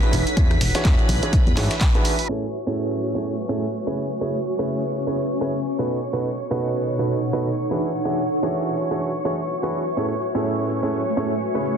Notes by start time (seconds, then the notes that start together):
Already playing: D#4 A4 B4 C#5 F#5 B5
0.03 E3 D4 E4 F#4 G#4 B4, closed hi-hat
0.13 E1 F#4, closed hi-hat, open hi-hat
0.24 E5, closed hi-hat
0.37 E2 E3 D4 E4 F#4 G#4 C#5, kick, closed hi-hat
0.51 B4, cross-stick, closed hi-hat
0.56 G#5
0.61 E1, snare, closed hi-hat, open hi-hat
0.75 E3 D4 E4 F#4 G#4 C#5, snare, closed hi-hat
0.85 E2, kick, snare, clap, closed hi-hat
0.99 closed hi-hat
1.09 B1, closed hi-hat, open hi-hat
1.23 E3 D4 E4 F#4 G#4 C#5, closed hi-hat
1.33 kick, closed hi-hat
1.47 E2, closed hi-hat
1.57 G#2 E3 D4 E4 F#4 G#4 C#5, snare, clap, closed hi-hat, open hi-hat
1.71 snare, closed hi-hat
1.81 kick, snare, clap, closed hi-hat
1.95 E3 D4 E4 F#4 G#4 B4, closed hi-hat
2.05 closed hi-hat, open hi-hat
2.19 open hi-hat
2.29 A2 A3 C#4 E4 G#4 A4 C#5 C#6, cabasa
2.53 cabasa
2.67 A2 C#4 E4 G#4 A4 C#5, cabasa
2.77 cabasa
2.91 cabasa
3.01 cabasa
3.15 A2 C#4 E4 G#4 A4 C#5, cabasa
3.25 cabasa
3.39 cabasa
3.49 A2 C#4 E4 G#4 A4 C#5, cabasa
3.63 cabasa
3.73 cabasa
3.87 C#3 C#4 E4 G#4 B4 C#5
3.97 C#4, cabasa
4.11 cabasa
4.21 C#3 C#4 E4 G#4 B4 C#5, cabasa
4.45 cabasa
4.59 C#3 C#4 E4 G#4 B4 C#5, cabasa
4.69 cabasa
4.83 cabasa
4.93 cabasa
5.07 C#3 C#4 E4 G#4 B4 C#5, cabasa
5.17 cabasa
5.31 cabasa
5.41 C#3 C#4 E4 G#4 B4 C#5, cabasa
5.55 cabasa
5.65 cabasa
5.79 B2 B3 D#4 F#4 A4 B4, cabasa
5.89 B2, cabasa
6.03 cabasa
6.10 B2 B3 D#4 F#4 A4 B4, cabasa
6.17 F#5
6.28 A4
6.37 cabasa
6.51 B2 B3 D#4 F#4 A4 B4, cabasa
6.61 cabasa
6.73 C#5, cabasa
6.85 cabasa
6.99 B2 B3 D#4 F#4 A4 B4, cabasa
7.09 cabasa
7.23 cabasa
7.33 B2 B3 D#4 F#4 A4 B4, cabasa
7.47 cabasa
7.57 cabasa
7.71 E3 D4 E4 F#4 G#4 B4
7.81 F#4, cabasa
7.95 B4, cabasa
8.05 E3 D4 E4 F#4 G#4 C#5, cabasa
8.29 cabasa
8.43 E3 D4 E4 F#4 G#4 C#5, cabasa
8.53 E5, cabasa
8.67 G#5, cabasa
8.77 cabasa
8.91 E3 D4 E4 F#4 G#4 C#5, cabasa
9.01 cabasa
9.15 cabasa
9.25 E3 D4 E4 F#4 G#4 C#5, cabasa
9.39 cabasa
9.49 cabasa
9.63 E3 D4 E4 F#4 G#4 B4, cabasa
9.73 cabasa
9.87 cabasa
9.97 A2 A3 C#4 E4 G#4 A4 C#5, cabasa
10.21 cabasa
10.35 A2 C#4 E4 G#4 A4 C#5, cabasa
10.45 cabasa
10.59 cabasa
10.69 cabasa
10.83 A2 C#4 E4 G#4 A4 C#5, cabasa
10.93 cabasa
11.07 cabasa
11.17 A2 C#4 E4 G#4 A4 C#5, cabasa
11.31 cabasa
11.41 cabasa
11.55 C#3 C#4 E4 G#4 B4 C#5
11.65 cabasa